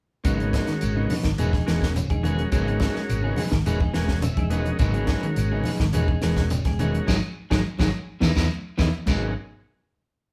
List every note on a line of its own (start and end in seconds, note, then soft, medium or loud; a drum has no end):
0.24 0.59 G#1 loud
0.24 0.43 C#3 medium
0.24 0.40 F#3 medium
0.24 1.15 G#3 medium
0.24 0.39 B3 medium
0.24 1.15 C#4 medium
0.24 0.38 D#4 medium
0.24 1.16 F#4 medium
0.24 1.16 A#4 medium
0.24 kick medium
0.24 closed hi-hat medium
0.24 claves medium
0.24 shekere medium
0.39 0.52 B3 soft
0.39 0.52 D#4 soft
0.39 closed hi-hat soft
0.53 0.71 B3 medium
0.53 0.71 D#4 medium
0.53 kick medium
0.53 snare medium
0.53 closed hi-hat medium
0.53 high conga medium
0.53 shekere soft
0.67 0.85 D#3 medium
0.67 muted fingered electric bass stroke soft
0.67 snare soft
0.67 closed hi-hat soft
0.81 1.05 G#1 medium
0.81 closed hi-hat medium
0.81 claves medium
0.81 shekere medium
0.96 1.14 C#3 medium
0.96 1.09 B3 medium
0.96 1.10 D#4 medium
1.10 1.28 F#3 medium
1.10 1.28 B3 medium
1.10 1.28 D#4 medium
1.10 open hi-hat medium
1.10 high conga medium
1.10 low conga medium
1.10 shekere soft
1.24 1.36 G#1 medium
1.24 1.42 D#3 medium
1.24 kick medium
1.24 snare medium
1.24 closed hi-hat soft
1.24 claves medium
1.38 1.61 E1 loud
1.38 1.52 G#3 medium
1.38 1.53 B3 medium
1.38 1.52 C#4 medium
1.38 1.53 D#4 medium
1.38 1.52 F#4 medium
1.38 1.52 G#4 medium
1.38 1.52 A#4 medium
1.38 closed hi-hat medium
1.38 shekere medium
1.53 1.67 D#4 soft
1.53 1.67 G#4 soft
1.53 kick medium
1.53 snare soft
1.53 high conga medium
1.66 2.02 E1 medium
1.66 1.84 E3 medium
1.66 1.93 G#3 medium
1.66 1.85 B3 medium
1.66 1.93 C#4 medium
1.66 1.85 D#4 medium
1.66 1.93 F#4 medium
1.66 1.85 G#4 medium
1.66 1.93 A#4 medium
1.66 snare medium
1.66 closed hi-hat soft
1.66 claves medium
1.66 shekere soft
1.82 kick medium
1.82 snare medium
1.82 closed hi-hat soft
1.94 2.12 C#3 medium
1.94 closed hi-hat medium
1.94 high conga medium
1.94 shekere medium
2.10 2.44 E1 medium
2.10 2.23 D#4 soft
2.10 2.24 G#4 medium
2.10 kick medium
2.10 closed hi-hat soft
2.10 high conga medium
2.10 claves medium
2.23 2.41 D#3 medium
2.23 2.50 G#3 medium
2.23 2.41 B3 medium
2.23 2.50 C#4 medium
2.23 2.51 F#4 medium
2.23 2.42 G#4 medium
2.23 2.51 A#4 medium
2.23 muted clean electric guitar stroke medium
2.23 closed hi-hat soft
2.23 low conga medium
2.23 shekere soft
2.38 closed hi-hat soft
2.38 high conga medium
2.51 2.86 G#1 loud
2.51 2.70 C#3 medium
2.51 2.67 F#3 medium
2.51 3.43 G#3 medium
2.51 2.67 B3 medium
2.51 3.43 C#4 medium
2.51 2.67 D#4 medium
2.51 3.43 F#4 medium
2.51 2.66 G#4 medium
2.51 3.43 A#4 loud
2.51 kick medium
2.51 closed hi-hat medium
2.51 claves medium
2.51 shekere medium
2.67 2.81 B3 soft
2.67 2.81 D#4 medium
2.67 2.81 G#4 soft
2.67 closed hi-hat soft
2.80 2.98 F#3 medium
2.80 2.99 B3 medium
2.80 2.99 D#4 medium
2.80 2.99 G#4 medium
2.80 kick medium
2.80 snare medium
2.80 closed hi-hat soft
2.80 high conga medium
2.80 shekere soft
2.96 muted fingered electric bass stroke soft
2.96 snare soft
3.09 3.33 G#1 medium
3.09 closed hi-hat medium
3.09 claves medium
3.09 shekere medium
3.23 3.40 C#3 medium
3.23 3.36 B3 soft
3.23 3.37 D#4 medium
3.23 3.37 G#4 medium
3.36 3.55 F#3 medium
3.36 3.55 B3 medium
3.36 3.55 D#4 medium
3.36 3.56 G#4 medium
3.36 open hi-hat medium
3.36 high conga medium
3.36 low conga medium
3.36 shekere soft
3.52 3.63 G#1 medium
3.52 3.69 D#3 medium
3.52 kick medium
3.52 snare medium
3.52 closed hi-hat soft
3.52 claves medium
3.65 3.89 E1 loud
3.65 3.80 G#3 medium
3.65 3.81 B3 medium
3.65 3.80 C#4 medium
3.65 3.80 D#4 medium
3.65 3.80 F#4 medium
3.65 3.80 G#4 medium
3.65 3.80 A#4 medium
3.65 closed hi-hat medium
3.65 shekere medium
3.80 3.93 D#4 soft
3.80 3.94 G#4 medium
3.80 kick medium
3.80 high conga medium
3.93 4.29 E1 medium
3.93 4.11 E3 medium
3.93 4.21 G#3 medium
3.93 4.11 B3 medium
3.93 4.21 C#4 medium
3.93 4.21 F#4 medium
3.93 4.12 G#4 medium
3.93 4.21 A#4 medium
3.93 4.21 G#5 medium
3.93 muted clean electric guitar stroke medium
3.93 snare medium
3.93 closed hi-hat soft
3.93 shekere soft
3.97 claves medium
4.08 kick medium
4.08 snare medium
4.08 low conga medium
4.22 4.41 C#3 medium
4.22 4.49 E5 medium
4.22 closed hi-hat medium
4.22 high conga medium
4.22 shekere medium
4.37 4.71 E1 medium
4.37 4.49 D#4 soft
4.37 4.50 G#4 medium
4.37 kick medium
4.37 closed hi-hat soft
4.37 high conga medium
4.37 claves medium
4.50 4.77 G#3 medium
4.50 4.68 B3 medium
4.50 4.78 C#4 medium
4.50 4.68 D#4 medium
4.50 4.78 F#4 medium
4.50 4.69 G#4 medium
4.50 4.78 A#4 medium
4.50 4.77 D#5 medium
4.50 closed hi-hat soft
4.50 low conga medium
4.50 shekere soft
4.65 closed hi-hat soft
4.65 high conga medium
4.78 5.14 G#1 medium
4.78 4.97 C#3 medium
4.78 4.94 F#3 medium
4.78 5.71 G#3 medium
4.78 4.94 B3 medium
4.78 5.71 C#4 medium
4.78 4.93 D#4 medium
4.78 5.71 F#4 medium
4.78 4.93 G#4 medium
4.78 5.71 A#4 medium
4.78 kick medium
4.78 closed hi-hat medium
4.78 shekere medium
4.82 claves medium
4.94 5.07 B3 soft
4.94 5.07 D#4 soft
4.94 5.08 G#4 medium
4.94 closed hi-hat soft
5.07 5.26 F#3 medium
5.07 5.26 B3 medium
5.07 5.26 D#4 medium
5.07 5.26 G#4 medium
5.07 kick medium
5.07 snare medium
5.07 closed hi-hat soft
5.07 high conga medium
5.07 shekere soft
5.23 5.41 D#3 medium
5.23 muted fingered electric bass stroke soft
5.23 closed hi-hat soft
5.36 5.60 G#1 medium
5.36 closed hi-hat medium
5.36 claves medium
5.36 shekere medium
5.52 5.69 C#3 medium
5.52 5.65 B3 soft
5.52 5.65 D#4 medium
5.52 5.65 G#4 medium
5.64 5.83 F#3 medium
5.64 5.83 B3 medium
5.64 5.83 D#4 medium
5.64 5.84 G#4 medium
5.64 open hi-hat medium
5.64 high conga medium
5.64 low conga medium
5.64 shekere soft
5.80 5.91 G#1 medium
5.80 5.98 D#3 medium
5.80 kick medium
5.80 snare medium
5.80 claves medium
5.93 6.17 E1 loud
5.93 6.07 G#3 medium
5.93 6.09 B3 medium
5.93 6.07 C#4 medium
5.93 6.08 D#4 medium
5.93 6.08 F#4 medium
5.93 6.07 G#4 loud
5.93 6.08 A#4 medium
5.93 closed hi-hat medium
5.93 high conga medium
5.93 shekere medium
6.08 6.22 D#4 soft
6.08 6.22 G#4 medium
6.08 kick medium
6.08 high conga medium
6.22 6.57 E1 medium
6.22 6.41 E3 medium
6.22 6.49 G#3 medium
6.22 6.40 B3 medium
6.22 6.49 C#4 medium
6.22 6.40 D#4 medium
6.22 6.49 F#4 medium
6.22 6.40 G#4 medium
6.22 6.49 A#4 medium
6.22 snare medium
6.22 closed hi-hat medium
6.22 claves medium
6.22 shekere soft
6.37 kick medium
6.37 snare medium
6.37 closed hi-hat soft
6.37 low conga medium
6.50 6.68 C#3 medium
6.50 closed hi-hat medium
6.50 high conga medium
6.50 shekere medium
6.65 6.99 E1 medium
6.65 6.79 G#4 soft
6.65 muted clean electric guitar stroke soft
6.65 kick medium
6.65 snare soft
6.65 closed hi-hat soft
6.65 high conga medium
6.65 claves medium
6.79 6.97 D#3 medium
6.79 7.08 G#3 medium
6.79 6.97 B3 medium
6.79 7.08 C#4 medium
6.79 6.97 D#4 medium
6.79 7.06 F#4 medium
6.79 6.97 G#4 medium
6.79 7.08 A#4 medium
6.79 closed hi-hat medium
6.79 low conga medium
6.79 shekere soft
6.94 closed hi-hat soft
6.94 high conga medium
7.07 7.19 G#1 medium
7.07 7.17 D#3 medium
7.07 7.17 F#3 medium
7.07 7.17 G#3 medium
7.07 7.17 D#4 medium
7.07 7.17 F#4 medium
7.07 7.17 G#4 medium
7.07 kick medium
7.07 snare medium
7.07 high conga medium
7.07 claves medium
7.07 shekere loud
7.50 7.62 G#1 medium
7.50 7.60 D#3 medium
7.50 7.60 F#3 medium
7.50 7.60 G#3 loud
7.50 7.60 D#4 medium
7.50 7.60 F#4 medium
7.50 7.60 G#4 medium
7.50 kick medium
7.50 snare medium
7.50 high conga medium
7.50 claves medium
7.50 shekere medium
7.79 7.90 G#1 loud
7.79 7.88 D#3 medium
7.79 7.88 F#3 medium
7.79 7.88 G#3 medium
7.79 7.89 D#4 medium
7.79 7.89 F#4 medium
7.79 7.89 G#4 medium
7.79 kick medium
7.79 snare medium
7.79 high conga medium
7.79 claves medium
7.79 shekere loud
8.20 8.33 E2 medium
8.20 8.31 B2 medium
8.20 8.31 D#3 medium
8.20 8.31 E3 medium
8.20 8.32 B3 medium
8.20 8.32 D#4 medium
8.20 8.32 E4 medium
8.20 8.32 G#4 medium
8.20 kick medium
8.20 snare medium
8.20 high conga medium
8.20 claves medium
8.20 shekere loud
8.36 8.47 E2 medium
8.36 8.45 B2 medium
8.36 8.45 D#3 medium
8.36 8.45 E3 medium
8.36 8.46 B3 medium
8.36 8.46 D#4 medium
8.36 8.46 E4 medium
8.36 8.46 G#4 medium
8.36 kick medium
8.36 snare medium
8.36 high conga medium
8.36 claves medium
8.36 shekere loud
8.78 8.90 E2 medium
8.78 8.88 B2 medium
8.78 8.88 D#3 medium
8.78 8.88 E3 medium
8.78 8.89 B3 medium
8.78 8.89 D#4 medium
8.78 8.89 E4 medium
8.78 8.89 G#4 medium
8.78 kick medium
8.78 snare medium
8.78 high conga medium
8.78 claves loud
8.78 shekere medium
9.06 9.34 G#1 medium
9.06 9.24 G#2 medium
9.06 9.30 F#3 medium
9.06 9.34 G#3 medium
9.06 9.31 B3 medium
9.06 9.34 C#4 medium
9.06 9.31 D#4 medium
9.06 9.34 F#4 medium
9.06 9.32 G#4 medium
9.06 9.34 A#4 medium
9.06 kick medium
9.06 crash medium
9.06 low conga loud
9.06 claves medium
9.06 shekere loud